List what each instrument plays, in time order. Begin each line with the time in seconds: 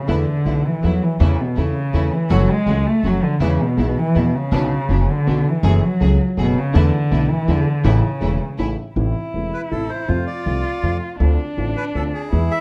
Already playing: cello C#3
0.07 grand piano E2 E3 A3 B3 A4, upright bass E2, cello D3, string section A3 B3 E4
0.45 upright bass B1, grand piano B1 B2 E3 A3 B3 A4, string section A3 B3 E4
0.66 cello E3
0.82 upright bass E2, grand piano E2 E3 A3 B3 A4, cello F#3, string section A3 B3 E4
1.03 cello E3
1.20 grand piano E2 E3 A3 C#4 A4, upright bass E2, cello C#3, string section A3 C#4 E4
1.40 cello B2
1.56 upright bass E2, grand piano E2 E3 A3 C#4 A4, cello C#3, string section A3 C#4 E4
1.93 upright bass E2, grand piano E2 E3 A3 C#4 A4, string section A3 C#4 E4
2.13 cello E3
2.29 upright bass F#1, grand piano F#2 F#3 A3 C#4 A4, cello F#3, string section A3 C#4 F#4
2.51 cello G#3
2.67 upright bass C#2, grand piano C#2 C#3 F#3 A3 C#4 A4, string section A3 C#4 F#4
2.87 cello A3
3.03 upright bass F#1, grand piano F#2 F#3 A3 C#4 A4, cello F#3, string section A3 C#4 F#4
3.23 cello D3
3.40 upright bass E2, grand piano E2 E3 G#3 B3 G#4, cello C#3, string section G#3 B3 E4
3.61 cello B2
3.77 grand piano B1 B2 E3 G#3 B3 G#4, upright bass B1, string section G#3 B3 E4
3.98 cello E3
4.15 grand piano E2 E3 G#3 B3 G#4, upright bass E2, cello B2, string section G#3 B3 E4
4.35 cello C#3
4.52 upright bass B1, grand piano B1 B2 D3 B3 C#4 F#4, string section B3 C#4 D4
4.89 upright bass F#1, grand piano F#1 F#2 D3 B3 C#4 F#4, string section B3 C#4 D4
5.10 cello D3
5.27 grand piano B1 B2 D3 B3 C#4 F#4, upright bass B1, string section B3 C#4 D4
5.48 cello E3
5.63 upright bass F#1, grand piano F#2 F#3 A3 C#4 G#4, string section A3 F#4 G#4
5.83 cello F#3
6.00 grand piano C#2 C#3 F#3 A3 C#4 G#4, upright bass C#2, string section A3 F#4 G#4
6.37 upright bass F#1, grand piano F#2 F#3 A3 C#4 G#4, cello B2, string section A3 F#4 G#4
6.59 cello C#3
6.73 grand piano E2 D3 E3 A3 B3 E4, upright bass E2, cello D3, string section A3 D4 E4
7.11 upright bass B1, grand piano B1 B2 D3 A3 B3 E4, string section A3 D4 E4
7.30 cello E3
7.47 upright bass E2, grand piano E2 D3 E3 G#3 B3 E4, cello D3, string section G#3 D4 E4
7.83 upright bass A1, grand piano A1 A2 C#3 E3 A3 E4, cello C#3, string section A3 C#4 E4
8.21 grand piano E1 E2 C#3 E3 A3 E4, upright bass E1, string section A3 C#4 E4
8.58 upright bass A1, grand piano A1 A2 C#3 E3 A3 E4, string section A3 C#4 E4
8.95 upright bass A1, grand piano A1 A2 C3 E3 A3 E4, cello E4
9.34 upright bass E1, grand piano E1 E2 C3 E3 A3 E4
9.53 bandoneon B4
9.71 grand piano A1 A2 C3 E3 A3 E4, upright bass A1, bandoneon A4
9.89 bandoneon C5
10.08 grand piano F2 C3 F3 A3 F4, upright bass F2, cello F4
10.27 bandoneon D5
10.46 upright bass C2, grand piano C2 C3 F3 A3 F4
10.83 upright bass F2, grand piano F2 C3 F3 A3 F4
11.20 upright bass D2, grand piano D2 D3 A3 C4 F4, cello D4
11.57 upright bass A1, grand piano A1 A2 D3 A3 C4 F4
11.77 bandoneon B4
11.95 upright bass D2, grand piano D2 D3 A3 C4 F4, bandoneon A4
12.14 bandoneon G#4
12.32 grand piano E2 E3 G#3 B3 G#4, upright bass E2, cello E4
12.51 bandoneon E5